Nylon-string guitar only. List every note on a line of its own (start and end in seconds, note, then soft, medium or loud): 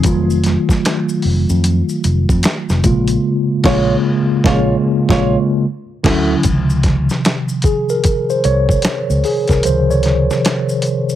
3.65 3.94 F4 loud
3.65 3.94 C#5 loud
4.46 4.74 F4 loud
4.46 4.74 C#5 medium
5.11 5.36 F4 loud
5.11 5.36 C#5 medium
6.05 6.34 A3 medium
6.05 6.34 F#4 medium